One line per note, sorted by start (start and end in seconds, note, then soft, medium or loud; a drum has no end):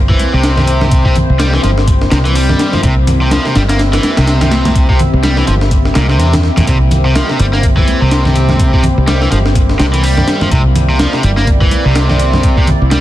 0.00 0.14 G1 medium
0.00 13.01 A#3 medium
0.00 13.01 C4 medium
0.00 13.01 E4 medium
0.00 13.01 G4 medium
0.00 2.82 C5 medium
0.09 0.32 E3 loud
0.09 kick medium
0.19 closed hi-hat medium
0.19 high conga medium
0.34 1.21 C2 medium
0.34 0.56 C3 loud
0.44 snare loud
0.44 closed hi-hat medium
0.58 1.04 C3 medium
0.58 snare soft
0.58 low conga medium
0.68 closed hi-hat medium
0.81 snare soft
0.81 high conga medium
0.81 low conga medium
0.91 kick loud
0.91 closed hi-hat medium
1.05 1.15 C3 loud
1.05 kick medium
1.16 closed hi-hat medium
1.16 low conga medium
1.30 1.58 C2 loud
1.40 1.52 G3 medium
1.40 snare loud
1.40 closed hi-hat medium
1.40 high conga medium
1.53 1.63 E3 loud
1.53 snare soft
1.64 2.06 G1 medium
1.64 1.69 F3 medium
1.64 snare soft
1.64 closed hi-hat medium
1.78 snare medium
1.88 kick loud
1.88 closed hi-hat medium
2.02 snare soft
2.12 2.54 C2 loud
2.12 2.17 C3 medium
2.12 snare loud
2.12 closed hi-hat medium
2.12 high conga medium
2.25 2.35 E3 medium
2.25 closed hi-hat soft
2.35 2.72 G3 medium
2.35 open hi-hat medium
2.49 snare medium
2.49 low conga medium
2.59 snare loud
2.59 closed hi-hat medium
2.73 2.80 F3 medium
2.73 snare soft
2.73 high conga medium
2.73 low conga medium
2.83 3.37 C2 loud
2.83 2.93 C3 medium
2.83 6.66 E5 medium
2.83 kick loud
2.83 closed hi-hat medium
3.07 closed hi-hat medium
3.07 low conga medium
3.21 3.30 C3 loud
3.31 3.45 F3 medium
3.31 snare loud
3.31 closed hi-hat medium
3.31 high conga medium
3.45 3.55 C3 medium
3.45 snare soft
3.55 3.98 G1 medium
3.55 3.61 G3 medium
3.55 snare loud
3.55 closed hi-hat medium
3.69 3.79 A#3 loud
3.69 snare loud
3.69 closed hi-hat medium
3.79 snare loud
3.79 closed hi-hat medium
3.93 4.16 E3 medium
3.93 snare loud
3.93 closed hi-hat medium
4.03 snare loud
4.03 closed hi-hat medium
4.03 high conga medium
4.17 5.05 C2 medium
4.17 4.40 C3 loud
4.17 snare loud
4.17 closed hi-hat medium
4.27 snare loud
4.27 closed hi-hat medium
4.41 4.88 C3 medium
4.41 snare loud
4.41 closed hi-hat medium
4.41 low conga medium
4.51 snare loud
4.51 closed hi-hat medium
4.65 snare loud
4.65 closed hi-hat medium
4.65 high conga medium
4.65 low conga medium
4.75 kick loud
4.75 closed hi-hat medium
4.89 4.99 C3 loud
4.89 kick medium
4.99 closed hi-hat medium
4.99 low conga medium
5.14 5.41 C2 loud
5.23 5.36 G3 medium
5.23 snare loud
5.23 closed hi-hat medium
5.23 high conga medium
5.37 5.47 E3 loud
5.37 snare soft
5.47 5.90 G1 medium
5.47 5.53 F3 medium
5.47 snare soft
5.47 closed hi-hat medium
5.61 snare medium
5.71 kick loud
5.71 closed hi-hat medium
5.85 snare soft
5.95 6.20 C2 loud
5.95 6.08 A#2 medium
5.95 snare loud
5.95 closed hi-hat medium
5.95 high conga medium
6.09 6.18 C3 medium
6.09 snare soft
6.19 6.49 E2 medium
6.19 6.32 C3 medium
6.19 snare soft
6.19 closed hi-hat medium
6.33 snare loud
6.33 closed hi-hat medium
6.33 low conga medium
6.44 snare soft
6.57 6.64 E2 medium
6.57 6.66 A#2 loud
6.57 snare soft
6.57 closed hi-hat medium
6.57 high conga medium
6.57 low conga medium
6.67 7.21 C2 medium
6.67 6.77 C3 medium
6.67 10.51 C5 medium
6.67 kick loud
6.67 closed hi-hat medium
6.91 closed hi-hat medium
6.91 low conga medium
7.05 7.14 C3 loud
7.15 7.29 F3 medium
7.15 snare loud
7.15 closed hi-hat medium
7.15 high conga medium
7.29 7.38 C3 medium
7.29 snare soft
7.39 7.82 G1 loud
7.39 7.45 G3 medium
7.39 closed hi-hat medium
7.53 7.63 A#3 loud
7.53 snare soft
7.63 kick loud
7.63 closed hi-hat medium
7.77 8.00 E3 loud
7.77 kick medium
7.88 closed hi-hat medium
7.88 high conga medium
8.01 8.89 C2 medium
8.01 8.24 C3 loud
8.11 snare loud
8.11 closed hi-hat medium
8.25 8.72 C3 medium
8.25 snare soft
8.25 low conga medium
8.36 closed hi-hat medium
8.49 snare soft
8.49 high conga medium
8.49 low conga medium
8.59 kick loud
8.59 closed hi-hat medium
8.73 8.83 C3 loud
8.73 kick medium
8.83 closed hi-hat medium
8.83 low conga medium
8.98 9.26 C2 loud
9.07 9.20 G3 medium
9.07 snare loud
9.07 closed hi-hat medium
9.07 high conga medium
9.21 9.31 E3 loud
9.21 snare soft
9.31 9.74 G1 loud
9.31 9.37 F3 medium
9.31 snare soft
9.31 closed hi-hat medium
9.46 snare medium
9.55 kick loud
9.55 closed hi-hat medium
9.70 snare soft
9.79 10.22 C2 loud
9.79 9.85 C3 medium
9.79 snare loud
9.79 closed hi-hat medium
9.79 high conga medium
9.93 10.03 E3 medium
9.93 closed hi-hat soft
10.03 10.40 G3 medium
10.03 open hi-hat medium
10.17 snare medium
10.17 low conga medium
10.28 snare loud
10.28 closed hi-hat medium
10.41 10.48 F3 medium
10.41 snare soft
10.41 high conga loud
10.41 low conga medium
10.51 11.05 C2 medium
10.51 10.61 C3 medium
10.51 13.01 D5 medium
10.51 kick loud
10.51 closed hi-hat medium
10.76 closed hi-hat medium
10.76 low conga medium
10.89 10.99 C3 loud
10.99 11.13 F3 medium
10.99 snare loud
10.99 closed hi-hat medium
10.99 high conga medium
11.13 11.23 C3 medium
11.13 snare soft
11.23 11.66 G1 medium
11.23 11.29 G3 loud
11.23 closed hi-hat medium
11.37 11.47 A#3 loud
11.37 snare soft
11.47 kick loud
11.47 closed hi-hat medium
11.61 11.84 E3 loud
11.61 kick loud
11.71 closed hi-hat medium
11.71 high conga medium
11.85 12.73 C2 medium
11.85 12.08 C3 loud
11.95 snare loud
11.95 closed hi-hat medium
12.09 12.56 C3 medium
12.09 snare soft
12.09 low conga medium
12.19 closed hi-hat medium
12.33 snare soft
12.33 high conga medium
12.33 low conga medium
12.43 kick loud
12.43 closed hi-hat medium
12.57 12.67 C3 loud
12.57 kick medium
12.67 closed hi-hat medium
12.67 low conga medium
12.82 13.01 C2 loud
12.91 13.01 G3 medium
12.91 snare loud
12.91 closed hi-hat medium
12.91 high conga loud